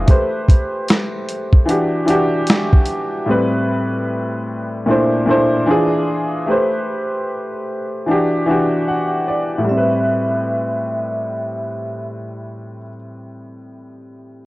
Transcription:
0.06 1.09 A3 medium
0.06 1.09 G4 medium
0.06 1.10 B4 medium
0.06 kick loud
0.06 closed hi-hat medium
0.11 1.11 C5 medium
0.48 kick medium
0.48 closed hi-hat medium
0.88 snare medium
0.88 closed hi-hat medium
1.29 closed hi-hat medium
1.53 kick medium
1.65 2.00 E3 medium
1.65 2.01 D4 medium
1.65 2.02 F#4 medium
1.65 closed hi-hat medium
1.70 2.03 G4 medium
2.06 2.82 E3 medium
2.06 2.82 D4 medium
2.06 2.83 F#4 medium
2.06 closed hi-hat medium
2.10 2.84 G4 loud
2.47 snare loud
2.47 closed hi-hat medium
2.73 kick medium
2.86 closed hi-hat medium
3.26 4.29 A2 medium
3.26 4.30 G3 medium
3.26 4.30 C4 medium
3.30 4.31 B4 medium
4.86 5.21 A#2 medium
4.86 5.21 A3 medium
4.86 5.22 D4 medium
4.86 5.22 E4 medium
4.91 5.23 C5 medium
5.26 5.67 A#2 medium
5.26 5.67 A3 medium
5.26 5.66 D4 medium
5.26 5.69 E4 medium
5.31 5.69 C5 loud
5.66 6.34 E3 loud
5.66 6.35 D4 medium
5.66 6.36 F4 medium
5.71 6.37 G#4 loud
6.46 7.49 A3 medium
6.46 7.50 G4 medium
6.46 7.50 B4 medium
6.51 7.51 C5 medium
8.06 8.41 E3 medium
8.06 8.41 D4 medium
8.06 8.42 F#4 medium
8.11 8.43 G4 loud
8.46 9.22 E3 medium
8.46 9.23 D4 medium
8.46 9.23 F#4 medium
8.51 9.24 G4 medium
8.88 9.25 F#5 medium
9.28 9.65 D5 medium
9.58 12.75 A2 medium
9.64 12.82 G3 medium
9.69 12.88 C4 medium
9.69 12.05 E5 medium
9.77 12.94 B4 medium

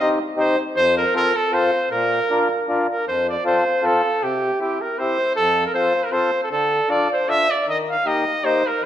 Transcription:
0.00 0.18 C4 medium
0.00 0.19 D#4 medium
0.00 0.19 G4 medium
0.36 0.55 C4 medium
0.36 0.56 D#4 medium
0.36 0.56 G4 medium
0.36 0.58 C5 medium
0.76 1.05 F2 medium
0.76 0.95 C5 loud
0.97 1.13 A#4 medium
1.14 1.32 C4 medium
1.14 1.33 F4 medium
1.14 1.33 A4 medium
1.14 1.37 A#4 loud
1.36 1.55 A4 medium
1.52 1.70 C4 medium
1.52 1.71 F4 medium
1.52 1.71 A4 medium
1.52 1.91 C5 loud
1.90 2.20 A#2 medium
1.90 2.64 A#4 medium
2.30 2.48 D4 medium
2.30 2.48 F4 medium
2.30 2.48 A#4 medium
2.68 2.87 D4 medium
2.68 2.87 F4 medium
2.68 2.87 A#4 medium
2.90 3.06 A#4 medium
3.07 3.37 F2 medium
3.07 3.27 C5 medium
3.29 3.45 D5 medium
3.45 3.64 C4 medium
3.45 3.64 F4 medium
3.45 3.64 A4 medium
3.45 3.87 C5 medium
3.82 4.02 C4 medium
3.82 4.02 F4 medium
3.82 4.02 A4 medium
3.82 4.24 A4 medium
4.22 4.51 C3 medium
4.22 4.61 G4 medium
4.60 4.79 C4 medium
4.60 4.79 E4 medium
4.60 4.79 G4 medium
4.60 4.83 G4 medium
4.81 5.00 A#4 medium
4.99 5.17 C4 medium
4.99 5.17 E4 medium
4.99 5.18 G4 medium
4.99 5.35 C5 medium
5.36 5.66 F2 medium
5.36 5.63 A4 loud
5.66 5.74 A#4 medium
5.74 5.93 C4 medium
5.74 5.93 F4 medium
5.74 5.93 A4 medium
5.74 6.06 C5 medium
6.04 6.13 A#4 medium
6.11 6.30 C4 medium
6.11 6.30 F4 medium
6.11 6.31 A4 medium
6.11 6.42 C5 medium
6.43 6.50 A4 medium
6.51 6.80 D3 medium
6.51 6.92 A4 medium
6.89 7.08 D4 soft
6.89 7.08 F4 medium
6.89 7.08 A4 medium
6.89 7.10 D5 medium
7.13 7.30 C5 medium
7.28 7.47 D4 medium
7.28 7.47 F4 medium
7.28 7.47 A4 medium
7.28 7.52 E5 loud
7.51 7.68 D5 medium
7.67 7.96 D#3 medium
7.67 7.78 D#5 medium
7.90 8.08 F5 medium
8.05 8.24 A#3 medium
8.05 8.24 D#4 soft
8.05 8.24 G4 medium
8.05 8.46 D#5 medium
8.44 8.63 A#3 medium
8.44 8.63 D#4 medium
8.44 8.63 G4 medium
8.44 8.68 C5 medium
8.67 8.85 A#4 medium

